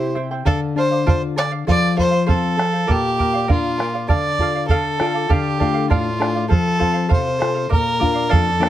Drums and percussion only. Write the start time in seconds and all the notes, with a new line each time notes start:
0.47 bombo low
1.08 bombo low
1.39 bombo rim
1.69 bombo low
1.99 bombo low
2.29 bombo low
2.59 bombo rim
2.89 bombo low
3.20 bombo low
3.50 bombo low
3.80 bombo rim
4.09 bombo low
4.39 bombo low
4.69 bombo low
5.00 bombo rim
5.30 bombo low
5.61 bombo low
5.91 bombo low
6.22 bombo rim
6.52 bombo low
6.81 bombo low
7.11 bombo low
7.42 bombo rim
7.72 bombo low
8.03 bombo low
8.33 bombo low
8.63 bombo rim